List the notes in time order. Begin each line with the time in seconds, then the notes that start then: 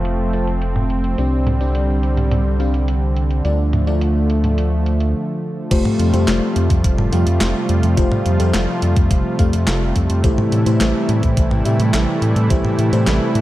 Already playing: F1 F3 A3 C4 F4 A4 F5
0.05 closed hi-hat
0.33 C4 F4 A4 A5, closed hi-hat
0.47 closed hi-hat
0.62 closed hi-hat
0.76 mid tom
0.90 closed hi-hat
1.04 closed hi-hat
1.18 C2 D3 G3 C4 D4 G4 D5, closed hi-hat
1.47 closed hi-hat, mid tom
1.61 C4 D4 G4 D5, closed hi-hat
1.75 closed hi-hat
2.03 closed hi-hat
2.17 closed hi-hat, mid tom
2.31 closed hi-hat, mid tom
2.60 C4 D4 G4 F5, closed hi-hat
2.74 closed hi-hat
2.88 closed hi-hat
3.16 closed hi-hat
3.31 closed hi-hat
3.45 D2 F3 A3 D4 F4 D5, closed hi-hat
3.73 closed hi-hat, mid tom
3.87 A3 D4 F4 D5, closed hi-hat
4.01 closed hi-hat
4.30 closed hi-hat
4.44 closed hi-hat, mid tom
4.58 closed hi-hat
4.86 closed hi-hat
5.00 closed hi-hat
5.71 F1 C3 F3 G3 A3 F4 G4 C5, kick, closed hi-hat, crash
5.85 mid tom
5.99 F2, closed hi-hat
6.14 F2 A3 F4 G4 C5, closed hi-hat
6.28 F1, snare, clap, closed hi-hat
6.56 F2, closed hi-hat
6.70 F2, kick, closed hi-hat
6.84 F1, kick, closed hi-hat
6.98 mid tom
7.13 F2 A3 F4 G4 F5, closed hi-hat
7.27 F2, closed hi-hat
7.41 F1, snare, clap, closed hi-hat
7.69 F2, closed hi-hat
7.83 F2, closed hi-hat
7.97 F1 A3 F4 G4 C5, kick, closed hi-hat
8.12 mid tom
8.26 F2, closed hi-hat
8.40 F2 A3 F4 G4 C5, closed hi-hat
8.54 F1, snare, clap, closed hi-hat
8.82 F2, closed hi-hat
8.96 F2, kick, closed hi-hat
9.11 F1, kick, closed hi-hat
9.39 F2 A3 F4 G4 F5, kick, closed hi-hat
9.53 F2, closed hi-hat
9.67 F1, snare, clap, closed hi-hat
9.96 F2, kick, closed hi-hat
10.10 F2, closed hi-hat
10.24 A1 E3 G3 A3 E4 G4 C5, kick, closed hi-hat
10.38 mid tom
10.52 A2, closed hi-hat
10.66 A2 A3 E4 G4 C5, closed hi-hat
10.81 A1, snare, clap, closed hi-hat
11.09 A2, closed hi-hat
11.23 A2, kick, closed hi-hat
11.37 A1, kick, closed hi-hat
11.51 mid tom
11.65 A2 A3 E4 G4 E5, closed hi-hat
11.80 A2, closed hi-hat
11.94 A1, snare, clap, closed hi-hat
12.22 A2, closed hi-hat
12.36 A2, closed hi-hat
12.50 A1 A3 E4 G4 C5, kick, closed hi-hat
12.65 mid tom
12.79 A2, closed hi-hat
12.93 A2 A3 E4 G4 C5, closed hi-hat
13.07 A1, snare, clap, closed hi-hat
13.35 A2, closed hi-hat